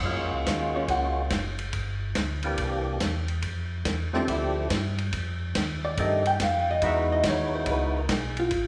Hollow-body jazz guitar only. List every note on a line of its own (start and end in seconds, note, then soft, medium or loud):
0.76 0.89 C#4 medium
0.76 0.89 C#5 medium
0.91 1.30 F#4 medium
0.91 1.29 F#5 medium
4.16 4.29 C4 medium
4.16 4.29 C5 medium
4.30 4.69 E4 medium
4.30 4.68 E5 medium
5.85 5.98 D5 medium
6.00 6.26 D#5 medium
6.27 6.41 G5 loud
6.43 6.69 F5 medium
6.71 6.84 D#5 medium
6.86 7.11 E5 medium
7.12 7.26 D#5 medium
7.29 7.54 C#5 medium
7.55 7.68 C5 medium
7.70 7.97 B4 medium
7.97 8.12 A#4 medium
8.12 8.38 G#4 medium
8.40 8.67 F4 medium